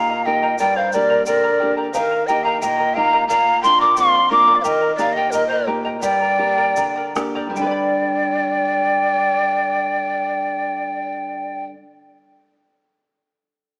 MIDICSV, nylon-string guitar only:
0, 0, Header, 1, 2, 480
1, 0, Start_track
1, 0, Key_signature, -2, "minor"
1, 0, Tempo, 676437
1, 419, Time_signature, 2, 2, 24, 8
1, 3777, Tempo, 720288
1, 4737, Tempo, 797872
1, 5217, Tempo, 827586
1, 8835, End_track
2, 0, Start_track
2, 0, Title_t, "Nylon-string guitar"
2, 0, Program_c, 0, 24
2, 0, Note_on_c, 0, 46, 66
2, 0, Note_on_c, 0, 58, 55
2, 0, Note_on_c, 0, 63, 48
2, 0, Note_on_c, 0, 67, 61
2, 86, Note_off_c, 0, 58, 0
2, 90, Note_off_c, 0, 63, 0
2, 92, Note_off_c, 0, 67, 0
2, 186, Note_on_c, 0, 58, 49
2, 191, Note_on_c, 0, 63, 43
2, 196, Note_on_c, 0, 67, 55
2, 376, Note_off_c, 0, 58, 0
2, 379, Note_off_c, 0, 63, 0
2, 380, Note_off_c, 0, 67, 0
2, 412, Note_off_c, 0, 46, 0
2, 427, Note_on_c, 0, 43, 68
2, 674, Note_on_c, 0, 58, 59
2, 678, Note_on_c, 0, 62, 49
2, 682, Note_on_c, 0, 67, 56
2, 890, Note_off_c, 0, 43, 0
2, 911, Note_on_c, 0, 50, 67
2, 1053, Note_off_c, 0, 58, 0
2, 1056, Note_off_c, 0, 62, 0
2, 1056, Note_off_c, 0, 67, 0
2, 1151, Note_on_c, 0, 58, 52
2, 1152, Note_on_c, 0, 62, 46
2, 1157, Note_on_c, 0, 67, 57
2, 1339, Note_off_c, 0, 58, 0
2, 1339, Note_off_c, 0, 62, 0
2, 1343, Note_off_c, 0, 67, 0
2, 1372, Note_off_c, 0, 50, 0
2, 1398, Note_on_c, 0, 51, 71
2, 1627, Note_on_c, 0, 58, 54
2, 1631, Note_on_c, 0, 63, 46
2, 1632, Note_on_c, 0, 67, 55
2, 1855, Note_off_c, 0, 51, 0
2, 1869, Note_on_c, 0, 46, 78
2, 2009, Note_off_c, 0, 58, 0
2, 2009, Note_off_c, 0, 63, 0
2, 2011, Note_off_c, 0, 67, 0
2, 2105, Note_on_c, 0, 58, 48
2, 2108, Note_on_c, 0, 63, 46
2, 2112, Note_on_c, 0, 67, 47
2, 2294, Note_off_c, 0, 58, 0
2, 2296, Note_off_c, 0, 63, 0
2, 2298, Note_off_c, 0, 67, 0
2, 2329, Note_off_c, 0, 46, 0
2, 2346, Note_on_c, 0, 46, 77
2, 2585, Note_on_c, 0, 58, 50
2, 2588, Note_on_c, 0, 62, 45
2, 2593, Note_on_c, 0, 65, 55
2, 2806, Note_off_c, 0, 46, 0
2, 2820, Note_on_c, 0, 41, 64
2, 2964, Note_off_c, 0, 58, 0
2, 2966, Note_off_c, 0, 62, 0
2, 2968, Note_off_c, 0, 65, 0
2, 3057, Note_on_c, 0, 58, 49
2, 3059, Note_on_c, 0, 62, 42
2, 3063, Note_on_c, 0, 65, 56
2, 3247, Note_off_c, 0, 58, 0
2, 3249, Note_off_c, 0, 62, 0
2, 3249, Note_off_c, 0, 65, 0
2, 3281, Note_off_c, 0, 41, 0
2, 3297, Note_on_c, 0, 51, 73
2, 3534, Note_on_c, 0, 58, 60
2, 3538, Note_on_c, 0, 63, 51
2, 3541, Note_on_c, 0, 67, 62
2, 3762, Note_off_c, 0, 51, 0
2, 3779, Note_on_c, 0, 46, 65
2, 3915, Note_off_c, 0, 58, 0
2, 3917, Note_off_c, 0, 67, 0
2, 3918, Note_off_c, 0, 63, 0
2, 4008, Note_on_c, 0, 58, 52
2, 4012, Note_on_c, 0, 63, 41
2, 4017, Note_on_c, 0, 67, 56
2, 4196, Note_off_c, 0, 58, 0
2, 4199, Note_off_c, 0, 63, 0
2, 4200, Note_off_c, 0, 67, 0
2, 4230, Note_off_c, 0, 46, 0
2, 4244, Note_on_c, 0, 43, 67
2, 4482, Note_on_c, 0, 58, 52
2, 4487, Note_on_c, 0, 62, 47
2, 4490, Note_on_c, 0, 67, 57
2, 4721, Note_off_c, 0, 43, 0
2, 4741, Note_on_c, 0, 50, 71
2, 4876, Note_off_c, 0, 58, 0
2, 4879, Note_off_c, 0, 62, 0
2, 4880, Note_off_c, 0, 67, 0
2, 4972, Note_on_c, 0, 58, 51
2, 4977, Note_on_c, 0, 62, 41
2, 4980, Note_on_c, 0, 67, 58
2, 5160, Note_on_c, 0, 43, 60
2, 5167, Note_off_c, 0, 58, 0
2, 5169, Note_off_c, 0, 62, 0
2, 5172, Note_off_c, 0, 67, 0
2, 5178, Note_off_c, 0, 50, 0
2, 5185, Note_on_c, 0, 50, 53
2, 5209, Note_on_c, 0, 55, 52
2, 5235, Note_on_c, 0, 62, 55
2, 5260, Note_on_c, 0, 71, 55
2, 5278, Note_off_c, 0, 71, 0
2, 5280, Note_on_c, 0, 74, 60
2, 7636, Note_off_c, 0, 43, 0
2, 7660, Note_off_c, 0, 50, 0
2, 7684, Note_off_c, 0, 55, 0
2, 7710, Note_off_c, 0, 62, 0
2, 7754, Note_off_c, 0, 74, 0
2, 8835, End_track
0, 0, End_of_file